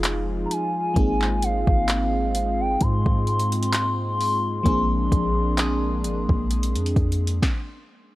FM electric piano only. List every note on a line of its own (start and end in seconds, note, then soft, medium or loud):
0.00 0.91 G#3 medium
0.00 0.92 C4 medium
0.00 0.92 D#4 medium
0.00 0.93 F4 medium
0.00 0.97 G#4 medium
0.94 4.60 G#3 medium
0.94 4.61 A#3 medium
0.94 4.62 C4 medium
0.94 4.62 D#4 medium
0.99 4.63 G#4 medium
4.63 7.37 F3 medium
4.63 7.38 A#3 medium
4.63 7.38 C4 medium
4.63 7.39 D4 medium
4.68 7.40 G#4 medium